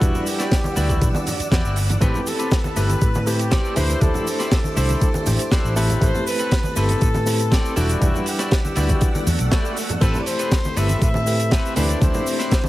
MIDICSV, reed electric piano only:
0, 0, Header, 1, 2, 480
1, 0, Start_track
1, 0, Tempo, 500000
1, 15, Time_signature, 4, 2, 24, 8
1, 12181, End_track
2, 0, Start_track
2, 0, Title_t, "Reed electric piano"
2, 0, Program_c, 0, 4
2, 9, Note_on_c, 0, 55, 89
2, 15, Note_on_c, 0, 62, 81
2, 18, Note_on_c, 0, 64, 84
2, 23, Note_on_c, 0, 78, 80
2, 27, Note_on_c, 0, 71, 101
2, 704, Note_off_c, 0, 55, 0
2, 707, Note_off_c, 0, 62, 0
2, 708, Note_off_c, 0, 64, 0
2, 711, Note_off_c, 0, 78, 0
2, 713, Note_off_c, 0, 71, 0
2, 736, Note_on_c, 0, 55, 81
2, 738, Note_on_c, 0, 62, 74
2, 741, Note_on_c, 0, 64, 73
2, 743, Note_on_c, 0, 78, 75
2, 744, Note_on_c, 0, 71, 85
2, 1192, Note_off_c, 0, 55, 0
2, 1193, Note_off_c, 0, 62, 0
2, 1195, Note_off_c, 0, 64, 0
2, 1196, Note_off_c, 0, 71, 0
2, 1196, Note_off_c, 0, 78, 0
2, 1924, Note_on_c, 0, 57, 90
2, 1929, Note_on_c, 0, 60, 81
2, 1933, Note_on_c, 0, 64, 86
2, 1938, Note_on_c, 0, 67, 84
2, 1944, Note_on_c, 0, 71, 99
2, 2622, Note_off_c, 0, 57, 0
2, 2624, Note_off_c, 0, 60, 0
2, 2626, Note_off_c, 0, 64, 0
2, 2628, Note_off_c, 0, 67, 0
2, 2631, Note_off_c, 0, 71, 0
2, 2652, Note_on_c, 0, 57, 81
2, 2656, Note_on_c, 0, 60, 74
2, 2657, Note_on_c, 0, 64, 69
2, 2659, Note_on_c, 0, 67, 75
2, 2661, Note_on_c, 0, 71, 89
2, 3110, Note_off_c, 0, 57, 0
2, 3112, Note_off_c, 0, 60, 0
2, 3113, Note_off_c, 0, 64, 0
2, 3114, Note_off_c, 0, 67, 0
2, 3115, Note_off_c, 0, 71, 0
2, 3134, Note_on_c, 0, 57, 81
2, 3136, Note_on_c, 0, 60, 73
2, 3138, Note_on_c, 0, 64, 73
2, 3139, Note_on_c, 0, 67, 73
2, 3141, Note_on_c, 0, 71, 85
2, 3587, Note_off_c, 0, 57, 0
2, 3587, Note_off_c, 0, 60, 0
2, 3588, Note_off_c, 0, 64, 0
2, 3589, Note_off_c, 0, 67, 0
2, 3590, Note_off_c, 0, 71, 0
2, 3611, Note_on_c, 0, 57, 88
2, 3616, Note_on_c, 0, 62, 85
2, 3617, Note_on_c, 0, 64, 81
2, 3619, Note_on_c, 0, 67, 81
2, 3622, Note_on_c, 0, 71, 99
2, 3825, Note_off_c, 0, 57, 0
2, 3828, Note_off_c, 0, 62, 0
2, 3828, Note_off_c, 0, 64, 0
2, 3829, Note_off_c, 0, 67, 0
2, 3831, Note_off_c, 0, 71, 0
2, 3852, Note_on_c, 0, 57, 89
2, 3855, Note_on_c, 0, 62, 88
2, 3861, Note_on_c, 0, 64, 84
2, 3865, Note_on_c, 0, 67, 84
2, 3870, Note_on_c, 0, 72, 101
2, 4546, Note_off_c, 0, 57, 0
2, 4547, Note_off_c, 0, 62, 0
2, 4550, Note_off_c, 0, 64, 0
2, 4552, Note_off_c, 0, 67, 0
2, 4555, Note_off_c, 0, 72, 0
2, 4575, Note_on_c, 0, 57, 80
2, 4578, Note_on_c, 0, 62, 73
2, 4580, Note_on_c, 0, 64, 75
2, 4582, Note_on_c, 0, 67, 75
2, 4585, Note_on_c, 0, 72, 89
2, 5032, Note_off_c, 0, 57, 0
2, 5033, Note_off_c, 0, 62, 0
2, 5034, Note_off_c, 0, 64, 0
2, 5035, Note_off_c, 0, 67, 0
2, 5037, Note_off_c, 0, 72, 0
2, 5054, Note_on_c, 0, 57, 79
2, 5058, Note_on_c, 0, 62, 71
2, 5061, Note_on_c, 0, 64, 72
2, 5062, Note_on_c, 0, 67, 72
2, 5065, Note_on_c, 0, 72, 87
2, 5507, Note_off_c, 0, 57, 0
2, 5508, Note_off_c, 0, 62, 0
2, 5510, Note_off_c, 0, 64, 0
2, 5510, Note_off_c, 0, 67, 0
2, 5512, Note_off_c, 0, 72, 0
2, 5530, Note_on_c, 0, 57, 95
2, 5531, Note_on_c, 0, 60, 83
2, 5535, Note_on_c, 0, 64, 85
2, 5536, Note_on_c, 0, 67, 86
2, 5540, Note_on_c, 0, 69, 101
2, 5745, Note_off_c, 0, 57, 0
2, 5745, Note_off_c, 0, 60, 0
2, 5747, Note_off_c, 0, 64, 0
2, 5748, Note_off_c, 0, 67, 0
2, 5749, Note_off_c, 0, 69, 0
2, 5767, Note_on_c, 0, 57, 90
2, 5771, Note_on_c, 0, 60, 82
2, 5776, Note_on_c, 0, 64, 81
2, 5782, Note_on_c, 0, 67, 84
2, 5786, Note_on_c, 0, 71, 97
2, 6463, Note_off_c, 0, 57, 0
2, 6465, Note_off_c, 0, 60, 0
2, 6468, Note_off_c, 0, 64, 0
2, 6470, Note_off_c, 0, 67, 0
2, 6472, Note_off_c, 0, 71, 0
2, 6493, Note_on_c, 0, 57, 82
2, 6496, Note_on_c, 0, 60, 76
2, 6498, Note_on_c, 0, 64, 73
2, 6500, Note_on_c, 0, 67, 75
2, 6502, Note_on_c, 0, 71, 94
2, 6950, Note_off_c, 0, 57, 0
2, 6952, Note_off_c, 0, 60, 0
2, 6953, Note_off_c, 0, 64, 0
2, 6954, Note_off_c, 0, 67, 0
2, 6955, Note_off_c, 0, 71, 0
2, 6972, Note_on_c, 0, 57, 79
2, 6974, Note_on_c, 0, 60, 71
2, 6976, Note_on_c, 0, 64, 69
2, 6979, Note_on_c, 0, 67, 71
2, 6982, Note_on_c, 0, 71, 86
2, 7425, Note_off_c, 0, 57, 0
2, 7427, Note_off_c, 0, 60, 0
2, 7427, Note_off_c, 0, 64, 0
2, 7429, Note_off_c, 0, 67, 0
2, 7430, Note_off_c, 0, 71, 0
2, 7452, Note_on_c, 0, 55, 93
2, 7455, Note_on_c, 0, 62, 83
2, 7456, Note_on_c, 0, 64, 82
2, 7459, Note_on_c, 0, 66, 86
2, 7460, Note_on_c, 0, 69, 100
2, 7665, Note_off_c, 0, 55, 0
2, 7667, Note_off_c, 0, 62, 0
2, 7668, Note_off_c, 0, 64, 0
2, 7669, Note_off_c, 0, 66, 0
2, 7669, Note_off_c, 0, 69, 0
2, 7687, Note_on_c, 0, 55, 95
2, 7691, Note_on_c, 0, 62, 84
2, 7697, Note_on_c, 0, 64, 83
2, 7701, Note_on_c, 0, 78, 82
2, 7707, Note_on_c, 0, 71, 97
2, 8383, Note_off_c, 0, 55, 0
2, 8385, Note_off_c, 0, 62, 0
2, 8388, Note_off_c, 0, 64, 0
2, 8390, Note_off_c, 0, 78, 0
2, 8393, Note_off_c, 0, 71, 0
2, 8410, Note_on_c, 0, 55, 82
2, 8414, Note_on_c, 0, 62, 75
2, 8416, Note_on_c, 0, 64, 76
2, 8419, Note_on_c, 0, 78, 74
2, 8421, Note_on_c, 0, 71, 89
2, 8869, Note_off_c, 0, 55, 0
2, 8871, Note_off_c, 0, 62, 0
2, 8872, Note_off_c, 0, 64, 0
2, 8874, Note_off_c, 0, 78, 0
2, 8875, Note_off_c, 0, 71, 0
2, 9609, Note_on_c, 0, 57, 91
2, 9613, Note_on_c, 0, 60, 85
2, 9618, Note_on_c, 0, 64, 86
2, 9623, Note_on_c, 0, 67, 82
2, 9629, Note_on_c, 0, 72, 98
2, 10304, Note_off_c, 0, 57, 0
2, 10306, Note_off_c, 0, 60, 0
2, 10309, Note_off_c, 0, 64, 0
2, 10311, Note_off_c, 0, 67, 0
2, 10314, Note_off_c, 0, 72, 0
2, 10333, Note_on_c, 0, 57, 79
2, 10335, Note_on_c, 0, 60, 73
2, 10337, Note_on_c, 0, 64, 72
2, 10339, Note_on_c, 0, 67, 73
2, 10342, Note_on_c, 0, 71, 91
2, 10791, Note_off_c, 0, 57, 0
2, 10792, Note_off_c, 0, 60, 0
2, 10793, Note_off_c, 0, 64, 0
2, 10794, Note_off_c, 0, 67, 0
2, 10795, Note_off_c, 0, 71, 0
2, 10809, Note_on_c, 0, 57, 81
2, 10812, Note_on_c, 0, 60, 71
2, 10813, Note_on_c, 0, 64, 73
2, 10817, Note_on_c, 0, 67, 76
2, 10820, Note_on_c, 0, 71, 88
2, 11264, Note_off_c, 0, 57, 0
2, 11266, Note_off_c, 0, 60, 0
2, 11266, Note_off_c, 0, 64, 0
2, 11268, Note_off_c, 0, 67, 0
2, 11270, Note_off_c, 0, 71, 0
2, 11291, Note_on_c, 0, 57, 92
2, 11293, Note_on_c, 0, 62, 84
2, 11295, Note_on_c, 0, 64, 86
2, 11297, Note_on_c, 0, 67, 86
2, 11301, Note_on_c, 0, 71, 100
2, 11505, Note_off_c, 0, 57, 0
2, 11506, Note_off_c, 0, 62, 0
2, 11507, Note_off_c, 0, 64, 0
2, 11508, Note_off_c, 0, 67, 0
2, 11510, Note_off_c, 0, 71, 0
2, 11528, Note_on_c, 0, 57, 93
2, 11533, Note_on_c, 0, 62, 84
2, 11537, Note_on_c, 0, 64, 82
2, 11542, Note_on_c, 0, 67, 83
2, 11546, Note_on_c, 0, 72, 100
2, 12181, Note_off_c, 0, 57, 0
2, 12181, Note_off_c, 0, 62, 0
2, 12181, Note_off_c, 0, 64, 0
2, 12181, Note_off_c, 0, 67, 0
2, 12181, Note_off_c, 0, 72, 0
2, 12181, End_track
0, 0, End_of_file